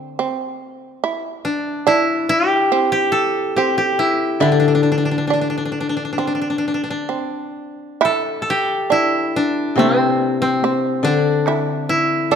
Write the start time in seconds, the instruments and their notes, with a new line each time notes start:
Already playing: koto D3 D4, shamisen C4
0.19 shamisen C4
1.04 shamisen E4
1.45 koto D4
1.87 shamisen D4, koto E4
2.29 koto G4
2.72 shamisen C4
2.92 koto G4
3.12 koto A4
3.56 shamisen C4, koto G4
3.78 koto G4
3.99 koto E4
4.40 koto D3 D4, shamisen E4
4.52 koto D4
4.60 koto D4
4.68 koto D4
4.75 koto D4
4.83 koto D4
4.92 koto D4
4.98 koto D4
5.05 koto D4
5.11 koto D4
5.18 koto D4
5.27 koto D4, shamisen D4
5.33 koto D4
5.41 koto D4
5.50 koto D4
5.58 koto D4
5.65 koto D4
5.72 koto D4
5.80 koto D4
5.89 koto D4
5.97 koto D4
6.05 koto D4
6.13 koto D4
6.18 shamisen C4, koto D4
6.27 koto D4
6.35 koto D4
6.41 koto D4
6.50 koto D4
6.58 koto D4
6.68 koto D4
6.74 koto D4
6.84 koto D4
6.90 koto D4
7.09 shamisen C4
8.01 shamisen E4, taiko rim
8.05 koto A4
8.42 koto A4
8.50 koto G4
8.90 shamisen D4, koto E4
9.36 koto D4
9.76 koto C3 C4, shamisen C4, taiko high
10.42 koto C4
10.62 shamisen C4, taiko high
11.03 koto D3 D4
11.47 shamisen E4, taiko rim
11.89 koto E4
12.31 shamisen D4, koto A4